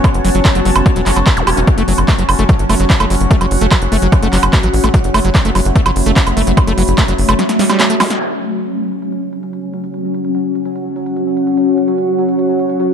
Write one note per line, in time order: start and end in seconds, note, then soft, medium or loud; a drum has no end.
0.00 8.19 F#3 medium
0.00 1.69 B3 medium
0.00 8.19 C#4 medium
0.00 8.21 F#4 medium
0.00 8.20 C#5 medium
0.00 2.20 A5 medium
0.04 0.10 F#3 medium
0.04 kick loud
0.04 closed hi-hat medium
0.04 high woodblock medium
0.14 0.20 F#1 medium
0.14 closed hi-hat medium
0.25 0.31 F#1 loud
0.25 0.30 F#3 medium
0.25 open hi-hat loud
0.35 0.41 F#1 medium
0.35 0.40 F#3 medium
0.35 closed hi-hat medium
0.45 kick loud
0.45 clap loud
0.45 closed hi-hat medium
0.45 high woodblock soft
0.55 0.61 F#1 medium
0.55 0.61 F#3 medium
0.55 closed hi-hat medium
0.65 0.71 F#1 loud
0.65 0.71 F#3 medium
0.65 open hi-hat medium
0.76 0.82 F#1 loud
0.76 closed hi-hat medium
0.76 high woodblock medium
0.86 0.91 F#3 medium
0.86 kick loud
0.86 closed hi-hat medium
0.96 1.02 E1 medium
0.96 1.01 F#3 medium
0.96 closed hi-hat medium
1.06 1.12 F#1 loud
1.06 1.12 F#3 medium
1.06 clap medium
1.06 open hi-hat loud
1.16 1.22 F#1 medium
1.16 1.20 F#3 medium
1.16 closed hi-hat medium
1.16 high woodblock soft
1.27 1.30 F#3 medium
1.27 kick loud
1.27 clap loud
1.27 closed hi-hat medium
1.37 1.43 E1 medium
1.37 closed hi-hat medium
1.37 zap medium
1.47 1.53 E1 loud
1.47 1.50 G4 loud
1.47 open hi-hat loud
1.47 high woodblock medium
1.57 1.63 E1 medium
1.57 1.60 C#4 medium
1.57 closed hi-hat medium
1.67 4.96 C#4 medium
1.67 kick loud
1.67 closed hi-hat medium
1.78 1.84 F#1 medium
1.78 1.83 A3 loud
1.78 closed hi-hat medium
1.88 1.94 F#1 loud
1.88 1.93 F#3 medium
1.88 open hi-hat loud
1.98 2.04 F#1 medium
1.98 closed hi-hat medium
1.98 high woodblock soft
2.08 2.14 A3 loud
2.08 kick loud
2.08 clap loud
2.08 closed hi-hat medium
2.18 2.24 F#1 medium
2.18 2.24 F#3 medium
2.18 5.47 F#5 medium
2.18 closed hi-hat medium
2.29 2.35 F#1 loud
2.29 open hi-hat medium
2.29 high woodblock medium
2.39 2.45 F#1 medium
2.39 2.44 A3 loud
2.39 closed hi-hat medium
2.49 2.54 F#3 medium
2.49 kick loud
2.49 closed hi-hat medium
2.59 2.65 G1 medium
2.59 closed hi-hat medium
2.69 2.75 F#1 loud
2.69 2.75 A3 loud
2.69 open hi-hat loud
2.69 high woodblock soft
2.80 2.86 F#1 loud
2.80 2.85 F#3 medium
2.80 closed hi-hat medium
2.90 kick loud
2.90 clap loud
2.90 closed hi-hat medium
3.00 3.06 F#1 medium
3.00 3.05 A3 loud
3.00 closed hi-hat medium
3.00 high woodblock medium
3.10 3.16 F#1 loud
3.10 3.16 F#3 medium
3.10 open hi-hat loud
3.20 3.26 F#1 medium
3.20 closed hi-hat medium
3.31 3.36 A3 loud
3.31 kick loud
3.31 closed hi-hat medium
3.41 3.47 F#1 medium
3.41 3.46 F#3 medium
3.41 closed hi-hat medium
3.41 high woodblock soft
3.51 3.57 F#1 loud
3.51 open hi-hat loud
3.61 3.67 F#1 medium
3.61 3.67 A3 loud
3.61 closed hi-hat medium
3.71 3.77 F#3 medium
3.71 kick loud
3.71 clap loud
3.71 closed hi-hat medium
3.71 high woodblock medium
3.82 3.88 F#1 medium
3.82 closed hi-hat medium
3.92 3.98 F#1 loud
3.92 3.97 A3 loud
3.92 open hi-hat medium
4.02 4.08 F#1 loud
4.02 4.08 F#3 medium
4.02 closed hi-hat medium
4.12 kick loud
4.12 closed hi-hat medium
4.12 high woodblock soft
4.22 4.29 F#1 medium
4.22 4.28 A3 loud
4.22 closed hi-hat medium
4.33 4.39 F#1 loud
4.33 4.38 F#3 medium
4.33 clap medium
4.33 open hi-hat loud
4.43 4.49 F#1 medium
4.43 closed hi-hat medium
4.43 high woodblock medium
4.53 4.59 A3 loud
4.53 kick loud
4.53 clap loud
4.53 closed hi-hat medium
4.63 4.69 A1 medium
4.63 4.69 F#3 medium
4.63 closed hi-hat medium
4.74 4.80 A1 loud
4.74 open hi-hat medium
4.84 4.90 A1 medium
4.84 4.89 A3 loud
4.84 closed hi-hat medium
4.84 high woodblock soft
4.94 4.99 F#3 medium
4.94 8.23 A3 medium
4.94 kick loud
4.94 closed hi-hat medium
5.04 5.10 F#1 medium
5.04 closed hi-hat medium
5.14 5.20 F#1 loud
5.14 5.20 A3 loud
5.14 open hi-hat loud
5.14 high woodblock medium
5.25 5.31 F#1 medium
5.25 5.30 F#3 medium
5.25 closed hi-hat medium
5.35 kick loud
5.35 clap loud
5.35 closed hi-hat medium
5.45 5.51 F#1 medium
5.45 5.50 A3 loud
5.45 8.23 B5 medium
5.45 closed hi-hat medium
5.55 5.61 F#1 loud
5.55 5.61 F#3 medium
5.55 open hi-hat medium
5.55 high woodblock soft
5.65 5.71 F#1 medium
5.65 closed hi-hat medium
5.76 5.81 A3 loud
5.76 kick loud
5.76 closed hi-hat medium
5.86 5.92 G1 medium
5.86 5.91 F#3 medium
5.86 closed hi-hat medium
5.86 high woodblock medium
5.96 6.02 F#1 loud
5.96 open hi-hat loud
6.06 6.12 F#1 medium
6.06 6.12 A3 loud
6.06 closed hi-hat medium
6.16 6.22 F#3 medium
6.16 kick loud
6.16 clap loud
6.16 closed hi-hat medium
6.27 6.33 F#1 medium
6.27 closed hi-hat medium
6.27 high woodblock soft
6.37 6.43 F#1 loud
6.37 6.42 A3 loud
6.37 open hi-hat medium
6.47 6.53 F#1 medium
6.47 6.52 F#3 medium
6.47 closed hi-hat medium
6.57 kick loud
6.57 closed hi-hat medium
6.57 high woodblock medium
6.67 6.73 F#1 medium
6.67 6.73 A3 loud
6.67 closed hi-hat medium
6.78 6.84 F#1 loud
6.78 6.83 F#3 medium
6.78 open hi-hat loud
6.88 6.94 F#1 medium
6.88 closed hi-hat medium
6.98 7.03 A3 loud
6.98 kick loud
6.98 clap loud
6.98 closed hi-hat medium
6.98 high woodblock soft
7.08 7.14 F#1 medium
7.08 7.14 F#3 medium
7.08 closed hi-hat medium
7.18 7.24 F#1 loud
7.18 open hi-hat medium
7.29 7.35 F#1 loud
7.29 7.34 A3 loud
7.29 closed hi-hat medium
7.29 high woodblock medium
7.39 7.44 F#3 medium
7.39 snare medium
7.39 closed hi-hat medium
7.49 snare medium
7.49 closed hi-hat medium
7.59 7.65 G3 loud
7.59 snare medium
7.59 open hi-hat loud
7.69 7.81 G3 loud
7.69 snare medium
7.69 closed hi-hat medium
7.69 high woodblock soft
7.80 7.83 F#3 loud
7.80 snare medium
7.80 clap loud
7.80 closed hi-hat medium
7.90 7.95 A3 medium
7.90 closed hi-hat medium
8.00 8.03 F#3 loud
8.00 snare loud
8.00 open hi-hat medium
8.00 zap medium
8.00 high woodblock medium
8.10 snare medium
8.10 closed hi-hat medium
8.20 12.94 F#3 medium
8.20 11.49 C#4 medium
8.20 12.94 C#4 medium
8.20 crash medium
8.51 closed hi-hat medium
8.60 12.94 F#4 medium
8.60 closed hi-hat medium
8.72 closed hi-hat medium
8.91 12.94 C#5 medium
8.91 closed hi-hat medium
9.02 closed hi-hat medium
9.12 closed hi-hat medium
9.28 12.94 F#5 medium
9.33 closed hi-hat medium
9.43 closed hi-hat medium
9.53 closed hi-hat medium
9.74 closed hi-hat medium
9.84 closed hi-hat medium
9.94 closed hi-hat medium
10.14 closed hi-hat medium
10.25 closed hi-hat medium
10.35 closed hi-hat medium
10.55 closed hi-hat medium
10.65 closed hi-hat medium
10.76 closed hi-hat medium
10.96 closed hi-hat medium
11.06 closed hi-hat medium
11.16 closed hi-hat medium
11.37 closed hi-hat medium
11.47 12.94 F#4 medium
11.47 closed hi-hat medium
11.57 closed hi-hat medium
11.78 closed hi-hat medium
11.88 closed hi-hat medium
11.98 closed hi-hat medium
12.18 closed hi-hat medium
12.29 closed hi-hat medium
12.39 closed hi-hat medium
12.59 closed hi-hat medium
12.70 closed hi-hat medium
12.80 closed hi-hat medium